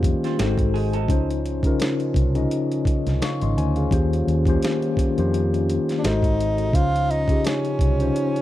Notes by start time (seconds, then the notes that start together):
Already playing: F2 D#3 G3 G#3 A#3 C#4 F4 G4 C5
0.03 kick, closed hi-hat
0.24 C4 F4, snare, closed hi-hat
0.38 G#1 C3 G#3 C4 D#4 F#4 A4 C5, snare, closed hi-hat
0.58 kick, closed hi-hat
0.74 D#4 G#4, open hi-hat
0.93 D#4 A4, closed hi-hat
1.08 C#2 C#3 F3 C#4 D#4 F4 C5, kick, closed hi-hat
1.31 closed hi-hat
1.46 closed hi-hat
1.63 C#3 C#4 D#4 F4, kick, closed hi-hat
1.67 A#4
1.80 snare, closed hi-hat
2.00 closed hi-hat
2.14 C2, kick, closed hi-hat
2.35 C#3 C#4 D#4 F4 D#5, closed hi-hat
2.51 closed hi-hat
2.72 closed hi-hat
2.85 muted fingered electric bass stroke, kick, closed hi-hat
3.07 C2, snare, closed hi-hat
3.22 F5 C#6, snare, closed hi-hat
3.41 G#1 D#5 C6, closed hi-hat
3.57 D2 C5 G#5, closed hi-hat
3.76 G#4 F5, closed hi-hat
3.91 D#2 D#3 G3 A#3 C#4 F4 G4 C5, kick, closed hi-hat
4.13 closed hi-hat
4.27 D#2, closed hi-hat
4.46 D#3 A#3 C#4 F4 G4 C5, kick, closed hi-hat
4.62 snare, closed hi-hat
4.82 closed hi-hat
4.97 muted fingered electric bass stroke, kick, closed hi-hat
5.17 F2 D#3 A#3 C#4 F4 G4 C5, closed hi-hat
5.34 closed hi-hat
5.54 closed hi-hat
5.69 closed hi-hat
5.89 snare, closed hi-hat
5.98 D4
6.03 G#1 C3 G#3 D#4 F#4 A4 C5, snare, closed hi-hat
6.23 kick, closed hi-hat
6.40 closed hi-hat
6.58 closed hi-hat
6.73 C#2 C#3 F3 C#4 D#4 F4 C5, kick, closed hi-hat
6.96 closed hi-hat
7.11 D#4, closed hi-hat
7.28 C#3 C#4 D#4 F4 G4, kick, closed hi-hat
7.45 C#4, snare, closed hi-hat
7.65 closed hi-hat
7.79 C2, kick, closed hi-hat
7.99 C#3 C#4 D#4 F4 C5, closed hi-hat
8.16 closed hi-hat
8.36 closed hi-hat